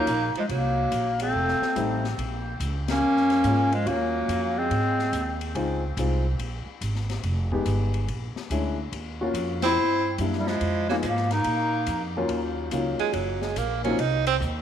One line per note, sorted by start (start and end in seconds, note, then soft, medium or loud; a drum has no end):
0.00 0.32 A#3 loud
0.00 0.33 D#4 loud
0.07 0.33 A#1 medium
0.07 kick soft
0.07 hi-hat pedal soft
0.07 ride medium
0.35 0.43 F3 medium
0.35 muted upright bass stroke soft
0.35 ride soft
0.39 0.45 G#3 medium
0.49 0.90 C2 medium
0.49 1.16 F#3 medium
0.49 1.18 A#3 medium
0.49 kick soft
0.49 ride medium
0.91 1.33 A#1 medium
0.91 kick soft
0.91 hi-hat pedal medium
0.91 ride medium
1.20 2.01 A3 medium
1.20 2.01 C4 medium
1.20 ride medium
1.34 1.60 F1 medium
1.34 kick soft
1.48 snare soft
1.62 snare soft
1.76 2.17 A1 medium
1.76 2.01 G3 medium
1.76 2.01 A3 medium
1.76 2.01 C4 soft
1.76 2.02 D#4 medium
1.76 kick soft
1.76 hi-hat pedal medium
1.76 ride medium
2.04 snare soft
2.18 2.59 A#1 medium
2.18 kick soft
2.18 ride medium
2.60 3.00 C#2 medium
2.60 kick soft
2.60 hi-hat pedal medium
2.60 ride medium
2.88 3.74 A#3 medium
2.88 3.75 C#4 loud
2.88 snare medium
2.88 ride medium
3.00 3.42 F2 medium
3.17 snare soft
3.30 snare soft
3.30 ride soft
3.44 3.85 G#2 medium
3.44 3.70 G#3 medium
3.44 3.70 A#3 medium
3.44 3.70 C#4 medium
3.44 3.71 F4 medium
3.44 kick soft
3.44 hi-hat pedal medium
3.44 ride medium
3.72 3.89 F3 medium
3.72 3.89 G#3 medium
3.72 ride soft
3.86 4.27 D#2 medium
3.86 4.59 F#3 medium
3.86 4.71 A#3 medium
3.86 4.60 A#3 medium
3.86 4.71 C#4 medium
3.86 4.71 F4 medium
3.86 4.71 F#4 medium
3.86 kick soft
3.86 ride medium
4.28 4.69 F2 medium
4.28 kick soft
4.28 hi-hat pedal medium
4.28 ride medium
4.58 5.42 G#3 medium
4.58 5.42 C4 medium
4.70 5.12 G#2 medium
4.70 kick soft
4.70 ride medium
4.99 snare soft
5.12 5.54 D#2 medium
5.12 kick soft
5.12 hi-hat pedal medium
5.12 ride medium
5.41 ride soft
5.55 5.96 C#2 medium
5.55 5.80 G#3 medium
5.55 5.81 C4 medium
5.55 5.81 D#4 medium
5.55 5.81 F4 medium
5.55 kick soft
5.55 ride medium
5.97 6.38 C2 medium
5.97 6.23 G#3 soft
5.97 6.23 C4 medium
5.97 6.23 D#4 soft
5.97 6.24 F4 medium
5.97 kick soft
5.97 hi-hat pedal medium
5.97 ride medium
6.39 6.65 A#1 medium
6.39 kick soft
6.39 ride medium
6.66 muted upright bass stroke soft
6.81 7.22 G#1 medium
6.81 kick soft
6.81 hi-hat pedal soft
6.81 ride medium
6.95 snare soft
7.10 snare soft
7.10 ride soft
7.23 7.65 F1 medium
7.23 kick soft
7.23 ride medium
7.52 8.05 G#3 medium
7.52 8.05 B3 medium
7.52 8.06 D#4 medium
7.52 8.06 G4 medium
7.52 kick soft
7.66 8.07 G1 medium
7.66 kick soft
7.66 hi-hat pedal soft
7.66 ride medium
7.94 ride soft
8.08 8.34 A#1 medium
8.08 kick soft
8.08 ride medium
8.36 muted upright bass stroke soft
8.36 snare soft
8.50 8.91 D2 medium
8.50 8.76 G#3 soft
8.50 8.76 C#4 soft
8.50 8.76 D4 medium
8.50 8.76 E4 medium
8.50 kick soft
8.50 hi-hat pedal soft
8.50 ride medium
8.92 9.33 D#2 medium
8.92 kick soft
8.92 ride medium
9.21 9.75 A#3 medium
9.21 9.75 C#4 medium
9.21 9.75 F4 medium
9.21 9.74 F#4 medium
9.34 9.75 F2 medium
9.34 kick soft
9.34 hi-hat pedal medium
9.34 ride medium
9.62 10.15 C4 loud
9.62 10.16 E4 medium
9.62 snare medium
9.62 ride medium
9.76 10.18 G2 medium
10.18 10.60 F#2 loud
10.18 10.45 G3 medium
10.18 10.45 A#3 soft
10.18 10.45 D4 medium
10.18 10.45 E4 medium
10.18 kick soft
10.18 hi-hat pedal soft
10.18 ride medium
10.33 snare soft
10.38 10.48 E3 medium
10.38 10.50 G3 medium
10.46 10.89 F3 medium
10.46 10.90 G#3 medium
10.46 snare soft
10.61 11.02 F2 medium
10.61 kick soft
10.61 ride medium
10.89 10.96 F#3 medium
10.89 11.02 G#3 medium
10.89 10.96 A#3 medium
10.89 11.03 B3 medium
10.89 11.03 D#4 medium
10.89 11.03 F4 medium
10.89 snare soft
11.03 11.44 G#2 medium
11.03 11.32 F3 medium
11.03 11.34 A#3 medium
11.03 kick soft
11.03 hi-hat pedal medium
11.03 ride medium
11.17 snare soft
11.31 12.16 A#3 medium
11.31 12.17 D#4 medium
11.31 snare soft
11.31 ride soft
11.44 11.86 A#2 medium
11.44 kick soft
11.44 ride medium
11.87 12.28 F2 medium
11.87 kick soft
11.87 hi-hat pedal soft
11.87 ride medium
12.17 12.70 D#2 medium
12.17 12.70 F#3 medium
12.17 12.70 A#3 medium
12.17 12.70 C#4 medium
12.17 12.70 F4 medium
12.29 12.70 D#2 medium
12.29 kick soft
12.29 ride medium
12.71 12.98 C#2 medium
12.71 13.37 F#3 medium
12.71 13.37 A#3 medium
12.71 13.37 C#4 medium
12.71 13.37 D#4 medium
12.71 13.37 F4 medium
12.71 kick soft
12.71 hi-hat pedal medium
12.71 ride medium
12.99 13.15 G#3 medium
12.99 muted upright bass stroke soft
12.99 ride soft
13.13 13.55 F#1 medium
13.13 13.43 F#3 medium
13.13 kick soft
13.13 ride medium
13.42 13.59 G#3 medium
13.42 snare soft
13.56 13.97 A#1 medium
13.56 13.83 A#3 medium
13.56 kick soft
13.56 hi-hat pedal medium
13.56 ride medium
13.84 13.98 F#3 medium
13.84 13.98 A#3 medium
13.84 13.98 C4 medium
13.84 14.02 C#4 medium
13.84 13.98 D#4 medium
13.84 13.98 F4 medium
13.84 ride soft
13.98 14.40 C2 medium
13.98 14.26 D#4 medium
13.98 kick soft
13.98 ride medium
14.27 14.36 C4 loud
14.27 ride medium
14.41 14.62 D#2 medium
14.41 kick soft
14.41 hi-hat pedal medium